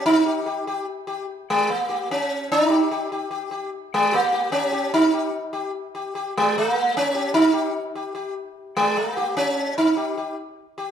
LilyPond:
\new Staff \with { instrumentName = "Sitar" } { \time 3/4 \tempo 4 = 148 << { r8 g'8 g'8 g'8 r8 g'8 | r4. g'8 r4 | r8 g'8 g'8 g'8 g'8 g'8 | r4 g'8 g'8 g'8 g'8 |
r8 g'8 r8 g'8 r8 g'8 | g'8 r2 g'8 | r8 g'8 r8 g'8 g'8 r8 | r4. g'8 r4 |
r8 g'8 g'8 r4 g'8 | } \\ { ees'4. r4. | r8 aes8 bes4 cis'4 | ees'4. r4. | r8 aes8 bes4 cis'4 |
ees'4. r4. | r8 aes8 bes4 cis'4 | ees'4. r4. | r8 aes8 bes4 cis'4 |
ees'4. r4. | } >> }